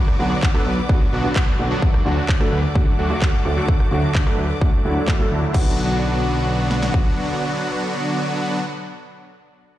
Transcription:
Already playing: supersaw synth D3 F#3 B3 D4 F#4, string section B4 D5 F#5 D6
0.08 cross-stick
0.19 analog synth bass B1, felt piano D3 F#3 B3 F#4, supersaw synth D3 F#3 B3 D4 F#4
0.43 kick, clap
0.54 felt piano D3 F#3 B3 A4, supersaw synth D3 F#3 B3 D4 B4, cross-stick
0.66 analog synth bass B1
0.89 felt piano D3 F#3 B3 F#4, supersaw synth D3 F#3 B3 D4 F#4, kick
1.13 analog synth bass B1, supersaw synth D3 F#3 B3 D4 F#4
1.24 felt piano D3 F#3 B3 F#4
1.36 supersaw synth D3 F#3 B3 D4 F#4, kick, clap
1.59 analog synth bass B1, felt piano D3 F#3 B3 F#4
1.71 supersaw synth D3 F#3 B3 D4 F#4
1.82 supersaw synth D3 F#3 A3 D4 F#4, string section A4 F#5 D6, kick
1.94 cross-stick
2.05 analog synth bass D2, felt piano D3 F#3 A3 F#4, supersaw synth D3 F#3 A3 D4 F#4
2.29 kick, clap
2.40 felt piano D3 F#3 A3 A4, supersaw synth D3 F#3 A3 D4 B4, cross-stick
2.52 analog synth bass D2
2.75 felt piano D3 F#3 A3 F#4, supersaw synth D3 F#3 A3 D4 F#4, kick
2.99 analog synth bass D2, supersaw synth D3 F#3 A3 D4 F#4
3.10 felt piano D3 F#3 A3 F#4
3.22 supersaw synth D3 F#3 A3 D4 F#4, kick, clap
3.45 analog synth bass D2, felt piano D3 F#3 A3 F#4
3.57 supersaw synth D3 F#3 A3 D4 F#4
3.68 supersaw synth D3 F#3 A3 D4 F#4, kick
3.80 cross-stick
3.91 analog synth bass D2, felt piano D3 F#3 A3 F#4, supersaw synth D3 F#3 A3 D4 F#4
4.15 kick, clap
4.26 felt piano D3 F#3 A3 A4, supersaw synth D3 F#3 A3 D4 B4, cross-stick
4.38 analog synth bass D2
4.61 felt piano D3 F#3 A3 F#4, supersaw synth D3 F#3 A3 D4 F#4, kick
4.84 analog synth bass D2, felt piano D3 F#3 A3 F#4, supersaw synth D3 F#3 A3 D4 E4
5.08 kick, clap
5.19 felt piano D3 F#3 A3 A4, supersaw synth D3 F#3 A3 D4 A4
5.31 analog synth bass D2, supersaw synth D3 F#3 A3 D4 E4
5.53 analog synth bass B1, string section B2 B3 D5 F#5, felt piano D3 F#3 B3 F#4, supersaw synth D3 F#3 B3 D4 F#4, kick, crash
6.71 snare
6.82 snare
6.94 kick

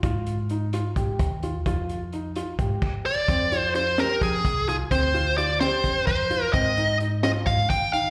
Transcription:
0.03 upright bass G#2, grand piano F4, kick, closed hi-hat
0.26 closed hi-hat
0.49 grand piano D#4, closed hi-hat
0.73 grand piano F4, closed hi-hat
0.96 upright bass G#2, grand piano G4, kick, closed hi-hat
1.19 upright bass D#2, kick, closed hi-hat
1.43 grand piano F4, closed hi-hat
1.66 upright bass F2, grand piano F4, kick, closed hi-hat
1.89 closed hi-hat
2.13 grand piano D#4, closed hi-hat
2.36 grand piano F4, closed hi-hat
2.59 upright bass G#2, grand piano G4, kick, closed hi-hat
2.82 kick, crash
3.06 lead electric guitar D5
3.28 upright bass F2, grand piano C4, kick, closed hi-hat
3.52 grand piano F4, closed hi-hat
3.60 lead electric guitar C5
3.75 grand piano F4, lead electric guitar C5, snare, closed hi-hat
3.98 grand piano G4, lead electric guitar A#4, snare, closed hi-hat
4.21 upright bass F3, lead electric guitar G#4, kick, closed hi-hat
4.45 upright bass C2, kick, closed hi-hat
4.68 grand piano F4, lead electric guitar G#4, closed hi-hat
4.91 upright bass D2, grand piano C4, lead electric guitar C5, kick, closed hi-hat
5.14 grand piano F4, closed hi-hat
5.38 grand piano F4, lead electric guitar D5, closed hi-hat
5.60 grand piano G4, lead electric guitar C5, snare, closed hi-hat
5.84 upright bass F2, kick, snare, closed hi-hat
6.07 upright bass F2, lead electric guitar C5, kick, closed hi-hat
6.30 grand piano F4, closed hi-hat
6.53 upright bass G#2, grand piano C4, lead electric guitar D#5, kick, closed hi-hat
6.77 grand piano D#4, closed hi-hat
7.00 grand piano D#4, closed hi-hat
7.23 grand piano F4, lead electric guitar D#5, snare, closed hi-hat
7.46 upright bass G#2, lead electric guitar F5, kick, closed hi-hat
7.70 upright bass D#2, lead electric guitar G5, kick, closed hi-hat
7.93 grand piano D#4, lead electric guitar F5, closed hi-hat

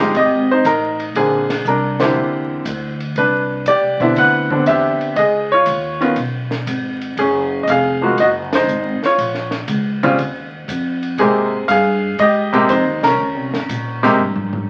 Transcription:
Already playing: upright bass G1, grand piano G#4 F5
0.00 grand piano F3 G#3 D#4 G4
0.14 upright bass G#1, grand piano D#5, kick, ride
0.18 grand piano G4
0.51 grand piano D#4 C5
0.64 upright bass A1, grand piano D#4 A#4, kick, hi-hat pedal, ride
1.00 ride
1.15 upright bass A#1, grand piano D3 A#3 C4 G#4, kick, ride
1.50 snare, ride
1.65 upright bass C2, grand piano A#4, kick, hi-hat pedal
1.69 grand piano D4
2.00 grand piano D3 A#3 C4 E4 G4 C5, snare, ride
2.15 upright bass E2
2.65 upright bass D2, kick, hi-hat pedal, ride
3.00 ride
3.15 upright bass C2, grand piano D4 B4, kick, ride
3.65 upright bass E2, grand piano G4 D5, kick, hi-hat pedal, ride
3.81 upright bass C2
3.97 upright bass B1, grand piano D3 B3 C4, kick, ride
4.02 grand piano E4
4.15 upright bass D2, grand piano B4 F#5, kick, ride
4.50 grand piano D3 B3 C4 D4, kick
4.66 upright bass E2, grand piano G4 E5, kick, hi-hat pedal, ride
5.00 muted upright bass stroke, ride
5.16 upright bass C#2, grand piano G#4 D#5, kick, ride
5.52 grand piano F4 C#5
5.66 upright bass D#2, kick, hi-hat pedal, ride
6.00 grand piano D#3 B3 C#4 F4, ride
6.16 upright bass B1, kick, ride
6.51 snare
6.66 upright bass G#1, kick, hi-hat pedal, ride
7.01 ride
7.17 upright bass F#1, grand piano C#4 G#4, kick, ride
7.63 upright bass F1, grand piano D#5
7.67 grand piano G#4 F5, kick, hi-hat pedal, ride
8.02 grand piano F3 G#3 A#3 F#4
8.17 upright bass F#1, grand piano F#4 D#5, kick, ride
8.53 grand piano D#4 C5, snare, ride
8.67 upright bass G#1, hi-hat pedal
9.01 muted upright bass stroke, snare
9.05 grand piano F4 C#5
9.18 upright bass A#1, kick, ride
9.34 snare
9.51 snare
9.68 upright bass C#2, kick, hi-hat pedal, ride
10.03 grand piano C#3 G3 C4 F4, ride
10.18 upright bass D#2, kick, ride
10.68 upright bass F2, kick, hi-hat pedal, ride
11.03 ride
11.18 upright bass G#2, grand piano C3 G#3 A#3 C4 G4 G#4, kick, ride
11.68 upright bass G2, grand piano G#4 F5, kick, hi-hat pedal, ride
12.18 upright bass G#2, grand piano G4 D#5, kick, ride
12.53 grand piano C3 G#3 A#3 G4, ride
12.68 upright bass F2, grand piano C5, kick, hi-hat pedal, ride
12.72 grand piano D#4
12.85 upright bass D#2
13.01 upright bass C2, grand piano A#4, snare, ride
13.07 grand piano C#4
13.18 upright bass D#2
13.34 upright bass C2
13.51 upright bass G#1, snare
13.69 upright bass A#2, kick, hi-hat pedal, ride
14.03 grand piano C3 G#3 A#3 G4, snare, ride
14.19 upright bass G2, floor tom
14.36 floor tom
14.53 floor tom

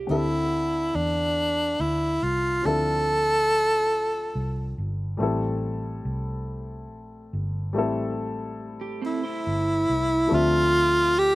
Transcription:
Already playing: clean electric guitar G4
0.07 fingered electric bass D2, grand piano D3 C4 D4 E5, tenor saxophone E4
0.12 grand piano A4
0.95 fingered electric bass E2, tenor saxophone D4
1.80 fingered electric bass D2, tenor saxophone E4
2.23 fingered electric bass C2, tenor saxophone F4
2.62 fingered electric bass D2, grand piano F3 C4 D4, tenor saxophone A4
2.66 grand piano E4 A4
4.35 fingered electric bass C2
4.78 fingered electric bass G1
5.17 fingered electric bass A1, grand piano G3 A3 C4
5.21 grand piano E4 A4
6.05 fingered electric bass C2
6.90 fingered electric bass A#1
7.33 fingered electric bass G1
7.73 fingered electric bass A1, grand piano G3 A3 C4
7.77 grand piano E4 A4
8.81 clean electric guitar G4
9.02 clean electric guitar C4 A4, tenor saxophone E4
9.23 clean electric guitar E4 C5
9.47 fingered electric bass G1
9.90 fingered electric bass C2
10.27 grand piano F3 A3 C4 D4
10.32 fingered electric bass D2, tenor saxophone F4, grand piano E5
11.19 tenor saxophone G4

